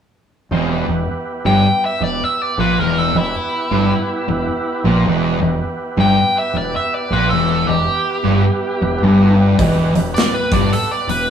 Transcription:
0.51 E1 E2 C4 F4 G#4 C5
0.69 B3 E4 G4 B4
0.88 E1 E2
1.45 G1 G2 G5
1.85 E5
2.00 E1 E2 D5
2.24 E5
2.42 D5
2.58 A#1 A#2 B4
2.79 E1 E2 B3 E4 G4 A#4 B4
2.98 A4
3.15 E1 E2 E4
3.71 G1 G2
4.28 E1 E2
4.84 A#1 A#2
5.06 E1 E2 B3 E4 G4 B4
5.41 E1 E2
5.97 G1 G2 G5
6.38 E5
6.53 E1 E2
6.57 D5
6.76 E5
6.94 D5
7.10 A#1 A#2 B4
7.30 E1 E2 B3 E4 A4 B4
7.34 G4
7.50 A4
7.67 E1 E2 G4
8.24 G1 G2
8.81 E1 E2
9.02 G1 G2
9.58 E1 E2 B3 E4 G4 B4, kick, open hi-hat
9.95 E1 E2, open hi-hat
10.14 D5, snare, open hi-hat
10.34 B4
10.51 G1 G2 D5, kick, open hi-hat
10.73 A4, open hi-hat
10.91 D5
11.07 E1 E2 B4, open hi-hat

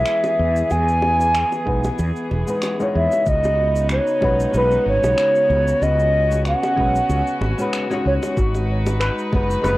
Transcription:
Already playing: E3 G#3 B3 E4 G#4 B4 E5
0.06 finger snap, shaker
0.24 high bongo, shaker
0.39 E2
0.56 shaker
0.70 E2 G#5, high bongo, shaker
0.88 shaker
1.02 high bongo
1.21 shaker
1.35 finger snap, shaker
1.52 high bongo, shaker
1.65 B1 G#3 B3 D#4 B4, kick
1.84 high bongo, shaker
1.99 E2, shaker
2.16 shaker
2.31 E1, high bongo
2.47 G#3 B3 D#4 B4, shaker
2.62 finger snap, high bongo, shaker
2.79 G#3 B3 D#4 E4 C#5, shaker
2.95 E2 E5
3.12 high bongo, shaker
3.26 C#2 C#3 D#4 F#4 D#5, kick, shaker
3.44 high bongo, shaker
3.76 shaker
3.89 C#5, finger snap, high bongo, shaker
4.07 shaker
4.20 B1 G#3 C#4 D#4 F#4 B4, kick, high bongo
4.40 shaker
4.51 B1 G#3 C#4 D#4, shaker
4.56 F#4 B4
4.71 high bongo, shaker
4.86 G#1 C#5
5.03 B1, high bongo, shaker
5.18 finger snap, shaker
5.35 shaker
5.50 C#2, high bongo
5.68 shaker
5.81 C#2 C#4 D#5, high bongo, shaker
5.99 shaker
6.31 high bongo, shaker
6.45 F#5, finger snap, shaker
6.63 high bongo, shaker
6.76 B1 G#3 C#4 D#4 F#4 B4, kick
6.95 shaker
7.09 C#2, high bongo, shaker
7.27 shaker
7.41 G#1, high bongo
7.58 G#3 C#4 D#4 F#4 B4, shaker
7.73 finger snap, shaker
7.90 G#3 C#4 D#4 F#4 C#5, high bongo, shaker
8.05 C#2 C#5
8.23 high bongo, shaker
8.37 G#1 G#3 D#4 F#4 B4, kick, shaker
8.55 high bongo, shaker
8.86 high bongo, shaker
9.00 B4, finger snap, shaker
9.19 shaker
9.32 F#1 G#3 B3 D#4 F#4 B4, kick, high bongo
9.51 shaker
9.62 F#1 G#3 B3 D#4 B4, high bongo, shaker
9.66 F#4 B4

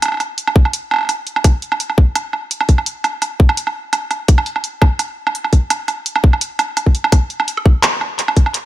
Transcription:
0.02 closed hi-hat, low woodblock
0.06 low woodblock
0.08 low woodblock
0.12 low woodblock
0.14 low woodblock
0.17 closed hi-hat, low woodblock
0.20 low woodblock
0.38 closed hi-hat
0.47 low woodblock
0.56 kick
0.65 low woodblock
0.73 closed hi-hat
0.91 low woodblock
0.94 low woodblock
0.96 low woodblock
0.98 low woodblock
1.01 low woodblock
1.03 low woodblock
1.05 low woodblock
1.07 closed hi-hat, low woodblock
1.09 low woodblock
1.27 closed hi-hat
1.36 low woodblock
1.44 kick, closed hi-hat, low woodblock
1.62 closed hi-hat
1.72 low woodblock
1.80 closed hi-hat
1.90 low woodblock
1.98 kick
2.15 closed hi-hat, low woodblock
2.33 low woodblock
2.51 closed hi-hat
2.61 low woodblock
2.69 kick, closed hi-hat
2.78 low woodblock
2.86 closed hi-hat
3.04 closed hi-hat, low woodblock
3.22 closed hi-hat, low woodblock
3.40 kick
3.49 low woodblock
3.57 closed hi-hat
3.67 low woodblock
3.93 closed hi-hat, low woodblock
4.11 closed hi-hat, low woodblock
4.28 kick, closed hi-hat
4.38 low woodblock
4.46 closed hi-hat
4.56 low woodblock
4.64 closed hi-hat
4.82 kick, low woodblock
4.99 closed hi-hat, low woodblock
5.27 low woodblock
5.35 closed hi-hat
5.44 low woodblock
5.53 kick, closed hi-hat
5.70 closed hi-hat, low woodblock
5.88 closed hi-hat, low woodblock
6.06 closed hi-hat
6.16 low woodblock
6.24 kick
6.33 low woodblock
6.41 closed hi-hat
6.59 closed hi-hat, low woodblock
6.77 closed hi-hat, low woodblock
6.86 kick
6.95 closed hi-hat
7.04 low woodblock
7.12 kick, closed hi-hat, low woodblock
7.30 closed hi-hat
7.40 low woodblock
7.48 closed hi-hat
7.57 low woodblock
7.66 kick
7.83 clap, closed hi-hat, low woodblock
8.01 low woodblock
8.19 closed hi-hat
8.28 low woodblock
8.36 kick, closed hi-hat
8.46 low woodblock
8.54 closed hi-hat

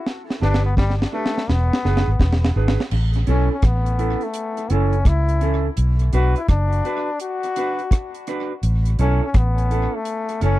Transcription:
0.06 snare
0.30 snare
0.41 G1 D4 G4 B4, snare
0.54 snare
0.66 B3
0.77 G3, kick, snare
0.90 snare
1.02 snare
1.13 A3 D4 G4 B4
1.26 snare
1.38 snare
1.49 E1 B3, snare
1.73 snare
1.84 F#1 D4 G#4 B4, snare
1.97 snare
2.08 G#1
2.19 E1, kick, snare
2.33 snare
2.45 snare
2.56 G#1 D4 G#4 B4
2.68 snare
2.80 snare
2.91 A1, crash
3.13 closed hi-hat
3.27 B1 C#4 E4 A4, closed hi-hat
3.53 C#4
3.62 A1 B3, kick, cross-stick, closed hi-hat
3.86 closed hi-hat
3.98 C#4 E4 A4, closed hi-hat
4.21 A3, closed hi-hat
4.34 closed hi-hat
4.57 muted clean electric guitar stroke, closed hi-hat
4.70 F#1 C#4 E4 A4, closed hi-hat
4.93 closed hi-hat
5.05 C#2 E4, kick, cross-stick, closed hi-hat
5.29 closed hi-hat
5.41 C#4 E4 A4, closed hi-hat
5.77 B1, closed hi-hat
5.99 closed hi-hat
6.13 B1 D4 F#4 B4, closed hi-hat
6.36 E4, closed hi-hat
6.48 F#1 D4, kick, cross-stick, closed hi-hat
6.73 closed hi-hat
6.85 D4 F#4 B4, closed hi-hat
7.20 F#4, closed hi-hat
7.43 muted clean electric guitar stroke, closed hi-hat
7.56 D4 F#4 B4, closed hi-hat
7.79 closed hi-hat
7.91 kick, cross-stick, closed hi-hat
8.15 closed hi-hat
8.27 D4 F#4 B4, cross-stick, closed hi-hat
8.63 A1, closed hi-hat
8.85 closed hi-hat
8.99 B1 C#4 E4 A4, closed hi-hat
9.25 C#4
9.34 A1 B3, kick, cross-stick, closed hi-hat
9.58 closed hi-hat
9.70 C#4 E4 A4, closed hi-hat
9.96 A3
10.05 closed hi-hat
10.29 muted clean electric guitar stroke, closed hi-hat
10.41 F#1 C#4 E4 A4, closed hi-hat

